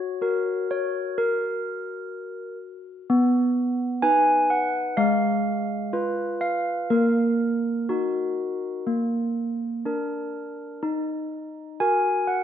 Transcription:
0, 0, Header, 1, 2, 480
1, 0, Start_track
1, 0, Key_signature, -6, "minor"
1, 0, Tempo, 955414
1, 1547, Time_signature, 4, 2, 24, 8
1, 2984, Tempo, 977199
1, 6175, End_track
2, 0, Start_track
2, 0, Title_t, "Handbells"
2, 0, Program_c, 0, 14
2, 0, Note_on_c, 0, 66, 57
2, 0, Note_on_c, 0, 73, 77
2, 89, Note_off_c, 0, 66, 0
2, 108, Note_on_c, 0, 66, 42
2, 110, Note_on_c, 0, 70, 47
2, 326, Note_off_c, 0, 73, 0
2, 356, Note_on_c, 0, 73, 64
2, 583, Note_off_c, 0, 73, 0
2, 586, Note_off_c, 0, 70, 0
2, 592, Note_on_c, 0, 70, 60
2, 1288, Note_off_c, 0, 70, 0
2, 1529, Note_off_c, 0, 66, 0
2, 1556, Note_on_c, 0, 59, 64
2, 2018, Note_off_c, 0, 59, 0
2, 2022, Note_on_c, 0, 80, 95
2, 2023, Note_on_c, 0, 71, 47
2, 2024, Note_on_c, 0, 63, 49
2, 2253, Note_off_c, 0, 80, 0
2, 2262, Note_on_c, 0, 78, 66
2, 2480, Note_off_c, 0, 63, 0
2, 2480, Note_off_c, 0, 71, 0
2, 2491, Note_off_c, 0, 78, 0
2, 2497, Note_on_c, 0, 77, 77
2, 2499, Note_on_c, 0, 56, 54
2, 2966, Note_off_c, 0, 56, 0
2, 2980, Note_on_c, 0, 65, 44
2, 2981, Note_on_c, 0, 71, 45
2, 3198, Note_off_c, 0, 77, 0
2, 3215, Note_on_c, 0, 77, 77
2, 3440, Note_off_c, 0, 65, 0
2, 3441, Note_off_c, 0, 71, 0
2, 3448, Note_off_c, 0, 77, 0
2, 3457, Note_on_c, 0, 58, 56
2, 3457, Note_on_c, 0, 70, 61
2, 3927, Note_off_c, 0, 58, 0
2, 3943, Note_on_c, 0, 66, 46
2, 3946, Note_on_c, 0, 63, 39
2, 4405, Note_off_c, 0, 66, 0
2, 4407, Note_off_c, 0, 63, 0
2, 4422, Note_on_c, 0, 58, 43
2, 4891, Note_off_c, 0, 58, 0
2, 4904, Note_off_c, 0, 70, 0
2, 4907, Note_on_c, 0, 62, 38
2, 4910, Note_on_c, 0, 70, 41
2, 5368, Note_off_c, 0, 62, 0
2, 5370, Note_off_c, 0, 70, 0
2, 5384, Note_on_c, 0, 63, 51
2, 5848, Note_off_c, 0, 63, 0
2, 5863, Note_on_c, 0, 66, 38
2, 5864, Note_on_c, 0, 80, 82
2, 5867, Note_on_c, 0, 70, 44
2, 6091, Note_off_c, 0, 80, 0
2, 6096, Note_on_c, 0, 78, 63
2, 6175, Note_off_c, 0, 66, 0
2, 6175, Note_off_c, 0, 70, 0
2, 6175, Note_off_c, 0, 78, 0
2, 6175, End_track
0, 0, End_of_file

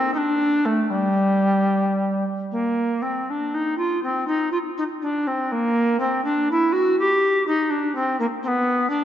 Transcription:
0, 0, Header, 1, 2, 480
1, 0, Start_track
1, 0, Key_signature, -2, "minor"
1, 0, Tempo, 519481
1, 852, Time_signature, 6, 3, 24, 8
1, 3256, Tempo, 493827
1, 6616, Tempo, 482703
1, 8664, End_track
2, 0, Start_track
2, 0, Title_t, "Recorder"
2, 0, Program_c, 0, 74
2, 0, Note_on_c, 0, 60, 90
2, 119, Note_off_c, 0, 60, 0
2, 125, Note_on_c, 0, 63, 79
2, 158, Note_on_c, 0, 62, 86
2, 167, Note_off_c, 0, 63, 0
2, 601, Note_on_c, 0, 57, 76
2, 614, Note_off_c, 0, 62, 0
2, 829, Note_on_c, 0, 55, 72
2, 843, Note_off_c, 0, 57, 0
2, 2062, Note_off_c, 0, 55, 0
2, 2321, Note_on_c, 0, 58, 56
2, 2787, Note_on_c, 0, 60, 62
2, 2801, Note_off_c, 0, 58, 0
2, 3046, Note_on_c, 0, 62, 59
2, 3060, Note_off_c, 0, 60, 0
2, 3270, Note_on_c, 0, 63, 58
2, 3285, Note_off_c, 0, 62, 0
2, 3493, Note_off_c, 0, 63, 0
2, 3499, Note_on_c, 0, 65, 67
2, 3734, Note_off_c, 0, 65, 0
2, 3748, Note_on_c, 0, 60, 69
2, 3975, Note_off_c, 0, 60, 0
2, 3981, Note_on_c, 0, 63, 73
2, 4211, Note_off_c, 0, 63, 0
2, 4217, Note_on_c, 0, 65, 70
2, 4275, Note_off_c, 0, 65, 0
2, 4471, Note_on_c, 0, 63, 67
2, 4529, Note_off_c, 0, 63, 0
2, 4706, Note_on_c, 0, 62, 64
2, 4952, Note_on_c, 0, 60, 67
2, 4967, Note_off_c, 0, 62, 0
2, 5190, Note_on_c, 0, 58, 73
2, 5205, Note_off_c, 0, 60, 0
2, 5649, Note_off_c, 0, 58, 0
2, 5655, Note_on_c, 0, 60, 74
2, 5891, Note_off_c, 0, 60, 0
2, 5897, Note_on_c, 0, 62, 72
2, 6134, Note_off_c, 0, 62, 0
2, 6158, Note_on_c, 0, 64, 76
2, 6363, Note_on_c, 0, 66, 85
2, 6378, Note_off_c, 0, 64, 0
2, 6610, Note_off_c, 0, 66, 0
2, 6623, Note_on_c, 0, 67, 88
2, 7091, Note_off_c, 0, 67, 0
2, 7102, Note_on_c, 0, 63, 87
2, 7330, Note_on_c, 0, 62, 72
2, 7345, Note_off_c, 0, 63, 0
2, 7571, Note_off_c, 0, 62, 0
2, 7577, Note_on_c, 0, 60, 77
2, 7810, Note_off_c, 0, 60, 0
2, 7822, Note_on_c, 0, 58, 77
2, 7881, Note_off_c, 0, 58, 0
2, 8056, Note_on_c, 0, 60, 81
2, 8100, Note_on_c, 0, 59, 88
2, 8110, Note_off_c, 0, 60, 0
2, 8513, Note_off_c, 0, 59, 0
2, 8519, Note_on_c, 0, 62, 89
2, 8664, Note_off_c, 0, 62, 0
2, 8664, End_track
0, 0, End_of_file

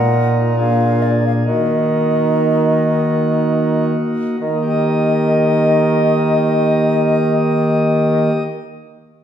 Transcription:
0, 0, Header, 1, 4, 480
1, 0, Start_track
1, 0, Tempo, 868307
1, 814, Time_signature, 3, 2, 24, 8
1, 814, Tempo, 952381
1, 1774, Tempo, 1036269
1, 4489, End_track
2, 0, Start_track
2, 0, Title_t, "Flute"
2, 0, Program_c, 0, 73
2, 0, Note_on_c, 0, 78, 67
2, 155, Note_off_c, 0, 78, 0
2, 331, Note_on_c, 0, 77, 66
2, 566, Note_on_c, 0, 74, 56
2, 574, Note_off_c, 0, 77, 0
2, 688, Note_off_c, 0, 74, 0
2, 699, Note_on_c, 0, 77, 52
2, 733, Note_off_c, 0, 77, 0
2, 810, Note_on_c, 0, 75, 59
2, 1991, Note_off_c, 0, 75, 0
2, 2258, Note_on_c, 0, 75, 52
2, 4053, Note_off_c, 0, 75, 0
2, 4489, End_track
3, 0, Start_track
3, 0, Title_t, "Pipe organ"
3, 0, Program_c, 1, 19
3, 0, Note_on_c, 1, 46, 42
3, 0, Note_on_c, 1, 58, 40
3, 0, Note_on_c, 1, 63, 38
3, 0, Note_on_c, 1, 70, 40
3, 290, Note_off_c, 1, 58, 0
3, 301, Note_on_c, 1, 58, 37
3, 303, Note_off_c, 1, 63, 0
3, 307, Note_off_c, 1, 70, 0
3, 311, Note_on_c, 1, 62, 36
3, 317, Note_on_c, 1, 68, 33
3, 784, Note_off_c, 1, 58, 0
3, 792, Note_off_c, 1, 46, 0
3, 792, Note_off_c, 1, 62, 0
3, 795, Note_off_c, 1, 68, 0
3, 795, Note_on_c, 1, 58, 35
3, 805, Note_on_c, 1, 63, 36
3, 815, Note_on_c, 1, 66, 31
3, 820, Note_on_c, 1, 51, 36
3, 2041, Note_off_c, 1, 51, 0
3, 2226, Note_off_c, 1, 58, 0
3, 2230, Note_off_c, 1, 63, 0
3, 2234, Note_off_c, 1, 66, 0
3, 2252, Note_on_c, 1, 51, 39
3, 2283, Note_on_c, 1, 58, 38
3, 2316, Note_on_c, 1, 63, 43
3, 2350, Note_on_c, 1, 67, 44
3, 2382, Note_on_c, 1, 75, 42
3, 4050, Note_off_c, 1, 51, 0
3, 4066, Note_off_c, 1, 58, 0
3, 4082, Note_off_c, 1, 63, 0
3, 4099, Note_off_c, 1, 67, 0
3, 4115, Note_off_c, 1, 75, 0
3, 4489, End_track
4, 0, Start_track
4, 0, Title_t, "Bassoon"
4, 0, Program_c, 2, 70
4, 0, Note_on_c, 2, 46, 55
4, 725, Note_off_c, 2, 46, 0
4, 818, Note_on_c, 2, 51, 52
4, 2040, Note_off_c, 2, 51, 0
4, 2254, Note_on_c, 2, 51, 53
4, 4051, Note_off_c, 2, 51, 0
4, 4489, End_track
0, 0, End_of_file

